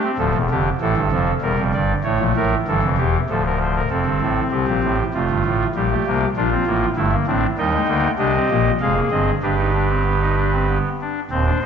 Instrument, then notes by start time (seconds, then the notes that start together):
pipe organ
Already playing: G4
0.04 C4
0.18 D1 D2 F3 A4
0.34 E1 E2
0.50 F1 F2 D3 G4
0.80 A1 A2 E3 A4
0.96 G1 G2
1.12 F1 F2 F3
1.41 E1 E2 G3 A#4
1.58 F1 F2
1.74 G1 G2 D5
2.04 A1 A2 A3 C#5
2.19 A#1 A#2
2.36 A1 A2 A#4
2.68 G1 G2 E3 A4
2.83 F1 F2
2.97 E1 E2 G4
3.29 D1 D2 F3 A4
3.46 A#4
3.62 C5
3.76 A#4
3.90 F1 F2 C4 A4
4.06 G1 G2
4.21 A1 A2
4.51 C2 C3 G4
4.67 A#1 A#2
4.83 A1 A2
5.14 F1 F2 A3 F4
5.29 G1 G2
5.45 A1 A2
5.75 A#1 A#2 G3 G4
5.91 A3
6.06 C2 C3 A#3
6.36 A#1 A#2 D4 F4
6.51 C4
6.66 A1 A2 A#3
6.96 G1 G2 A3 E4
7.12 A#3
7.27 A1 A2 C4 D4
7.58 D#2 D#3 G3 D#4 G5
7.73 G#3
7.88 D2 D3 A#3
8.18 C2 C3 D4 G4 D#5
8.36 C4
8.51 A#1 A#2 A#3
8.80 F1 F2 G#3 G#4 F5
8.95 A#3
9.11 G1 G2 C4 D#5
9.42 G1 G2 D4 G4 B4
9.58 D#4
9.74 D4
9.89 C4
10.05 B3
10.21 D#4
10.36 D4
10.52 C4
10.70 B3
11.01 D4
11.30 D#1 D#2 C4 C5
11.45 D4
11.62 D1 D2 D#4